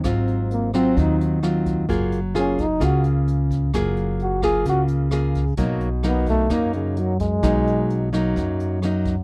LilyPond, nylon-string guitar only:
\new Staff \with { instrumentName = "Nylon-string guitar" } { \time 4/4 \key ges \lydian \tempo 4 = 130 << { <ges c' f'>4. <ges c' f'>4. <ges c' f'>4 | <bes f' aes'>8 r8 <bes f' aes'>8 r8 <bes f' aes'>2 | <bes f' aes'>4. <bes f' aes'>4. <bes f' aes'>8 r8 | <ges bes ees'>8 r8 <ges bes ees'>4 <ges bes ees'>4. r8 |
<ges bes ees'>4. <ges bes ees'>4. <ges bes ees'>8 r8 | } \\ { aes,2 ees2 | ges2 des2 | ges2 des2 | ces2 ges,2 |
ces2 ges,2 | } >> }